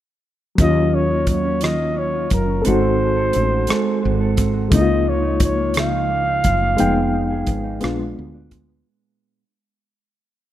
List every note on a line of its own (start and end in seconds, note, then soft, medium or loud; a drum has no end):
0.55 1.62 D#3 medium
0.55 2.60 F#3 medium
0.55 2.61 A#3 soft
0.55 1.09 F4 medium
0.55 kick loud
0.55 closed hi-hat medium
0.60 2.27 D#2 medium
0.60 2.62 C#4 soft
0.60 2.63 F4 medium
0.60 0.96 D#5 medium
0.75 1.28 F#3 soft
0.94 1.44 C#4 soft
0.94 1.28 C#5 medium
1.11 1.62 F4 medium
1.27 1.78 F#3 soft
1.27 1.65 C#5 medium
1.27 kick medium
1.27 closed hi-hat medium
1.45 1.95 C#4 soft
1.61 3.19 D#3 medium
1.61 2.13 F4 medium
1.61 2.00 D#5 medium
1.61 cross-stick medium
1.61 closed hi-hat medium
1.79 2.30 F#3 soft
1.96 2.46 C#4 soft
1.96 2.32 C#5 medium
2.14 2.72 F4 medium
2.30 2.63 F#1 medium
2.30 2.64 F#3 medium
2.30 2.68 A#4 medium
2.30 kick medium
2.30 closed hi-hat medium
2.48 2.72 C#4 soft
2.62 3.68 G#3 medium
2.62 4.67 C4 soft
2.62 4.66 A4 medium
2.62 3.15 A4 medium
2.62 closed hi-hat medium
2.66 3.31 G#1 medium
2.66 4.68 D#4 medium
2.66 4.70 F#4 medium
2.66 4.38 C5 medium
2.82 3.32 C4 medium
2.99 3.50 F#4 medium
3.16 3.68 A4 medium
3.33 3.66 A1 medium
3.33 3.85 C4 medium
3.33 closed hi-hat medium
3.51 4.02 F#4 medium
3.67 4.88 G#3 medium
3.67 4.19 A4 medium
3.67 muted fretless electric bass stroke soft
3.67 cross-stick medium
3.67 closed hi-hat medium
3.86 4.36 C4 soft
4.03 4.69 G#1 medium
4.03 4.53 F#4 medium
4.20 4.79 A4 medium
4.37 4.78 C4 medium
4.37 kick medium
4.37 closed hi-hat medium
4.54 4.71 F#4 soft
4.69 5.74 C#3 medium
4.69 6.73 G#3 medium
4.69 6.74 A#3 medium
4.69 5.22 D#4 medium
4.69 kick loud
4.69 closed hi-hat medium
4.73 6.41 C#2 medium
4.73 6.75 D#4 medium
4.73 4.80 E4 soft
4.73 5.11 D#5 medium
4.82 6.80 F4 medium
4.89 5.40 F3 medium
5.06 5.57 A#3 medium
5.06 5.42 C#5 medium
5.22 5.76 D#4 medium
5.40 5.91 F3 medium
5.40 kick medium
5.40 closed hi-hat medium
5.44 5.75 C#5 medium
5.58 6.08 A#3 medium
5.74 6.86 C#3 medium
5.74 6.25 D#4 medium
5.74 cross-stick medium
5.74 closed hi-hat medium
5.79 8.15 F5 medium
5.92 6.44 F3 soft
6.09 6.60 A#3 medium
6.26 6.85 D#4 medium
6.44 6.76 F#1 medium
6.44 6.78 F3 medium
6.44 kick medium
6.44 closed hi-hat medium
6.62 6.86 A#3 soft
6.77 7.98 F3 medium
6.77 7.79 G#3 medium
6.77 7.80 B3 medium
6.77 7.82 D#4 medium
6.77 7.30 G#4 medium
6.77 7.83 G5 medium
6.77 closed hi-hat medium
6.81 7.45 F1 medium
6.96 7.47 B3 medium
7.13 7.63 D#4 medium
7.31 8.37 G#4 medium
7.47 7.79 G#1 medium
7.47 8.16 B3 medium
7.47 kick medium
7.47 closed hi-hat medium
7.64 7.82 D#4 medium
7.80 8.14 A#1 medium
7.80 9.43 A#2 medium
7.80 8.85 G#3 medium
7.80 8.85 B3 medium
7.80 8.34 D4 medium
7.80 8.86 D4 medium
7.80 8.86 F4 medium
7.80 cross-stick medium
7.80 closed hi-hat medium
7.99 8.51 G#3 soft
8.16 8.83 D2 medium
8.16 8.68 B3 soft
8.34 9.43 D4 medium
8.51 9.43 G#3 medium
8.51 kick medium
8.51 closed hi-hat medium
8.69 9.43 B3 soft